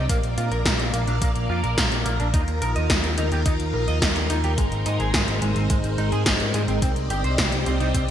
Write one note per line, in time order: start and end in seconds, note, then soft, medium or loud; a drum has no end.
0.09 0.20 A#1 loud
0.09 0.16 A#3 medium
0.09 2.31 A#3 medium
0.09 6.78 A#4 medium
0.09 2.32 D5 medium
0.09 2.32 F5 medium
0.09 kick loud
0.09 closed hi-hat medium
0.23 0.34 A#1 medium
0.23 closed hi-hat soft
0.37 0.48 A#2 medium
0.37 0.48 F4 medium
0.37 closed hi-hat medium
0.51 0.62 A#1 medium
0.51 0.62 A#4 medium
0.51 closed hi-hat soft
0.65 0.76 A#1 loud
0.65 0.72 A#4 medium
0.65 kick loud
0.65 snare loud
0.65 closed hi-hat medium
0.79 0.90 A#1 medium
0.79 closed hi-hat soft
0.93 1.04 A#1 medium
0.93 1.01 A#3 medium
0.93 closed hi-hat medium
1.07 1.18 A#1 medium
1.07 1.15 D4 medium
1.07 closed hi-hat soft
1.22 1.32 A#1 loud
1.22 1.29 A#3 medium
1.22 kick loud
1.22 closed hi-hat medium
1.36 1.46 A#1 medium
1.36 closed hi-hat soft
1.49 1.60 F2 medium
1.49 1.60 F4 medium
1.63 1.74 A#1 medium
1.63 1.74 A#4 medium
1.63 closed hi-hat soft
1.78 1.88 A#1 loud
1.78 1.85 A#4 medium
1.78 kick loud
1.78 snare loud
1.78 closed hi-hat loud
1.92 2.02 A#1 medium
1.92 closed hi-hat soft
2.05 2.16 A#1 medium
2.05 2.13 A#3 medium
2.05 closed hi-hat medium
2.20 2.30 A#1 medium
2.20 2.27 D4 medium
2.20 closed hi-hat soft
2.34 2.44 D#2 loud
2.34 6.78 D#4 medium
2.34 2.41 D#4 medium
2.34 4.56 F4 medium
2.34 kick loud
2.34 closed hi-hat medium
2.48 2.58 D#2 medium
2.48 closed hi-hat soft
2.62 2.72 A#1 medium
2.62 2.72 A#4 medium
2.62 closed hi-hat medium
2.76 2.86 D#2 medium
2.76 2.86 D#5 medium
2.76 closed hi-hat soft
2.90 3.00 D#2 medium
2.90 2.97 D#5 medium
2.90 kick loud
2.90 snare loud
2.90 closed hi-hat medium
3.04 3.14 D#2 medium
3.04 closed hi-hat soft
3.18 3.28 D#2 medium
3.18 3.25 D#4 medium
3.18 closed hi-hat medium
3.32 3.42 D#2 medium
3.32 3.39 G4 medium
3.32 closed hi-hat soft
3.46 3.56 D#2 loud
3.46 3.53 D#4 medium
3.46 kick loud
3.46 closed hi-hat loud
3.60 3.70 D#2 medium
3.60 closed hi-hat soft
3.74 3.84 A#1 medium
3.74 3.84 A#4 medium
3.88 3.98 D#2 medium
3.88 3.98 D#5 medium
3.88 closed hi-hat soft
4.02 4.12 D#2 loud
4.02 4.09 D#5 medium
4.02 kick loud
4.02 snare loud
4.02 closed hi-hat medium
4.16 4.26 D#2 medium
4.16 closed hi-hat soft
4.30 4.40 D#2 medium
4.30 4.37 D#4 medium
4.30 closed hi-hat medium
4.44 4.54 D#2 medium
4.44 4.51 G4 medium
4.44 closed hi-hat soft
4.58 4.68 G#1 loud
4.58 6.80 G#3 medium
4.58 4.65 G#3 medium
4.58 6.80 C5 medium
4.58 kick loud
4.58 closed hi-hat medium
4.72 4.82 G#1 medium
4.72 closed hi-hat soft
4.86 4.96 G#2 medium
4.86 4.97 D#4 medium
4.86 closed hi-hat medium
5.00 5.10 G#1 medium
5.00 5.11 G#4 medium
5.00 closed hi-hat soft
5.14 5.24 G#1 loud
5.14 5.21 G#4 medium
5.14 kick loud
5.14 snare loud
5.14 closed hi-hat medium
5.28 5.38 G#1 medium
5.28 closed hi-hat soft
5.42 5.52 G#1 medium
5.42 5.49 G#3 medium
5.42 closed hi-hat medium
5.56 5.66 G#1 medium
5.56 5.63 C4 medium
5.56 closed hi-hat soft
5.70 5.80 G#1 loud
5.70 5.77 G#3 medium
5.70 kick loud
5.70 closed hi-hat medium
5.84 5.95 G#1 medium
5.84 closed hi-hat soft
5.98 6.09 G#1 medium
5.98 6.09 D#4 medium
5.98 closed hi-hat soft
6.12 6.23 G#2 medium
6.12 6.23 G#4 medium
6.12 closed hi-hat soft
6.26 6.37 G#1 loud
6.26 6.33 G#4 medium
6.26 kick loud
6.26 snare loud
6.26 closed hi-hat medium
6.40 6.51 G#2 medium
6.40 closed hi-hat soft
6.54 6.65 G#2 medium
6.54 6.61 G#3 medium
6.54 closed hi-hat medium
6.68 6.79 G#1 medium
6.68 6.75 C4 medium
6.68 closed hi-hat soft
6.82 6.93 C2 loud
6.82 8.11 C4 medium
6.82 6.89 C4 medium
6.82 8.11 G4 medium
6.82 8.11 D5 medium
6.82 8.11 D#5 medium
6.82 kick loud
6.82 closed hi-hat medium
6.96 7.07 C2 medium
6.96 closed hi-hat soft
7.10 7.21 G1 medium
7.10 7.21 G4 medium
7.10 closed hi-hat medium
7.24 7.35 C2 medium
7.24 7.35 C5 medium
7.24 closed hi-hat soft
7.38 7.49 C2 loud
7.38 7.45 C5 medium
7.38 kick loud
7.38 snare loud
7.38 closed hi-hat medium
7.52 7.63 C2 medium
7.52 closed hi-hat soft
7.66 7.77 C2 medium
7.66 7.73 C4 medium
7.66 closed hi-hat medium
7.80 7.91 C2 medium
7.80 7.87 D#4 medium
7.80 closed hi-hat soft
7.94 8.05 C2 loud
7.94 8.02 C4 medium
7.94 kick loud
7.94 closed hi-hat medium